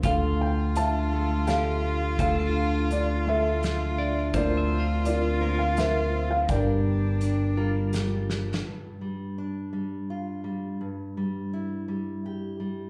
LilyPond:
<<
  \new Staff \with { instrumentName = "Felt piano" } { \time 3/4 \key g \dorian \tempo 4 = 84 << { f''8 g''8 a''4 f''4 | f''4 d''8 e''4. | d''4 d''8. f''16 e''8. f''16 | g''2 r4 |
r2. | r2. | } \\ { a'4 <e'' f''>4 a'4 | a'4. a'4. | <f' bes'>4 <f' bes'>4 <bes' c''>4 | <bes' d''>2 r4 |
r2. | r2. | } >> }
  \new Staff \with { instrumentName = "Clean electric guitar" } { \time 3/4 \key g \dorian <d' f'>2 g'4 | a'2~ a'8 d''8 | c''16 e''16 f'4 bes'4.~ | bes'8 r4 f'4.~ |
f'8 r2 r8 | r2. | }
  \new Staff \with { instrumentName = "Cello" } { \time 3/4 \key g \dorian f'2.~ | f'2. | f'2. | d'2~ d'8 r8 |
r2. | r2. | }
  \new Staff \with { instrumentName = "Steel-string acoustic guitar" } { \time 3/4 \key g \dorian << { r4 d'8 a'8 f'8 d'8 | r4 d'8 a'8 f'8 d'8 | <bes c' f' c''>4 c'8 c''8 f'8 c'8 | <g d' g' bes'>4 d'8 bes'8 g'8 d'8 |
r4 d'4 f'4 | r4 e'4 g'4 | } \\ { d4. a4. | d4. a4. | d4. bes4. | g,4. g4. |
g,8 g4 g4 g8 | g,8 g4 g4 g8 | } >> }
  \new Staff \with { instrumentName = "Fingered electric bass" } { \clef bass \time 3/4 \key g \dorian d,2. | d,2. | d,2. | g,,2. |
r2. | r2. | }
  \new DrumStaff \with { instrumentName = "Drums" } \drummode { \time 3/4 <hh bd>4 hh4 <hh sn>4 | <hh bd>4 hh4 <hh sn>4 | <hh bd>4 hh4 <hh sn>4 | <hh bd>4 hh4 \tuplet 3/2 { <hh sn>16 r16 r16 sn16 r16 sn16 } |
r4 r4 r4 | r4 r4 r4 | }
>>